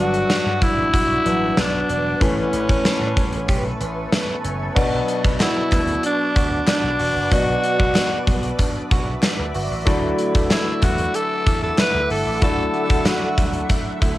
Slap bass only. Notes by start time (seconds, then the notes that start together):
0.00 G1
0.46 G2
0.78 A1
0.94 B1
1.26 A1
1.57 B1
1.89 E1
2.21 A1
2.53 A1
2.85 muted slap bass stroke
3.01 A2
3.33 A1
3.49 B1
3.81 A1
4.45 F#1
4.76 B1
5.25 B1
5.72 D2
6.36 D2
6.84 B1
7.00 E1
7.16 F#1
7.32 B1
7.80 B1
8.27 B1
8.91 B1
9.39 D2
9.55 G1
9.71 A1
9.87 D2
10.35 D2
10.82 E2
11.47 E2
11.94 D2
12.10 G1
12.26 A1
12.42 D2
12.90 D2
13.38 D2
14.02 D2